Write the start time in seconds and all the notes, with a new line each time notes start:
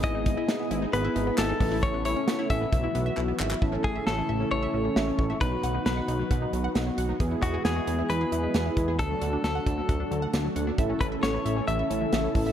Already playing: G#1 G#3 B3 E4 G#4
0.04 E4 D#5, kick, closed hi-hat
0.15 D#4
0.26 kick, closed hi-hat
0.37 E4
0.48 D#4, snare, closed hi-hat
0.60 B3
0.71 G#1 E4, closed hi-hat
0.82 D#4
0.93 G#1 B3 B4, closed hi-hat
1.05 E4
1.16 G#1 D#4, closed hi-hat
1.27 B3
1.38 G#1 E4 A4, snare, clap, closed hi-hat
1.49 D#4
1.60 A1 C#3 A3 B3 C#4 E4 A4, kick, open hi-hat
1.72 E4
1.83 C#4 C#5, kick, closed hi-hat
1.94 B3
2.05 E4 C#5, closed hi-hat
2.16 C#4
2.28 B3, snare, closed hi-hat
2.39 E4
2.50 A1 C#4 E5, kick, closed hi-hat
2.61 B3
2.72 B1 E3 F#3 B3 E4 F#4 E5, kick, closed hi-hat
2.84 E4
2.95 B1 B3, closed hi-hat
3.06 E5
3.17 B1 E4, clap
3.28 B3
3.40 G#1 E5, clap
3.51 E4, clap
3.62 A1 C#3 E3 A3 C#4 E4 A4 E5, kick
3.73 C#4
3.84 A1 E3 G#4, kick
3.95 E5
4.07 A1 C#4 A4, snare
4.18 E3
4.29 A1 E5
4.40 C#4
4.51 A1 E3 C#5
4.63 E5
4.74 A1 C#4
4.85 E3
4.96 A1 E5, snare
5.07 C#4
5.19 A1 E3, kick
5.30 E5
5.41 B1 D#3 F#3 B3 D#4 F#4 B4, kick, closed hi-hat
5.52 F#3
5.63 B1 F#5, closed hi-hat
5.75 D#4
5.86 B1 F#3 B4, snare, closed hi-hat
5.97 F#5
6.08 B1 D#4, closed hi-hat
6.19 F#3
6.31 B1 F#5, kick, closed hi-hat
6.42 D#4
6.53 B1 F#3, closed hi-hat
6.64 F#5
6.75 B1 D#4, snare, closed hi-hat
6.87 F#3
6.98 B1 F#5, closed hi-hat
7.09 D#4
7.20 E2 E3 G#3 B3 E4 G#4, kick, closed hi-hat
7.31 E4
7.42 E2 G#3 F#4, kick, closed hi-hat
7.54 G#4
7.65 E2 E4 G#4, snare, closed hi-hat
7.76 G#3
7.87 E2 G#4, closed hi-hat
7.99 E4
8.10 E2 G#3 B4, closed hi-hat
8.21 G#4
8.32 E2 E4, closed hi-hat
8.43 G#3
8.54 E2 G#4, snare, closed hi-hat
8.66 E4
8.77 E2 G#3, kick, closed hi-hat
8.88 G#4
8.99 D2 D3 F#3 A3 D4 F#4 A4, kick, closed hi-hat
9.10 F#3
9.22 D2 F#5, closed hi-hat
9.33 D4
9.44 D2 F#3 A4, snare, closed hi-hat
9.55 F#5
9.66 D2 D4, kick, closed hi-hat
9.78 F#3
9.89 D2 F#5, kick, closed hi-hat
10.00 D4
10.11 D2 F#3, closed hi-hat
10.22 F#5
10.33 D2 D4, snare, closed hi-hat
10.45 F#3
10.56 D2 F#5, closed hi-hat
10.67 D4
10.78 A1 C#3 E3 C#4 E4 A4 E5, kick, closed hi-hat
10.89 C#4
11.01 A1 E3 B4, kick, closed hi-hat
11.12 E5
11.23 A1 C#4 C#5, snare, closed hi-hat
11.34 E3
11.46 A1 E5, closed hi-hat
11.57 C#4
11.68 A1 E3 E5, closed hi-hat
11.79 E5
11.90 A1 C#4, closed hi-hat
12.02 E3
12.13 A1 E5, snare, closed hi-hat
12.24 C#4
12.35 A1 E3, kick, open hi-hat
12.46 E5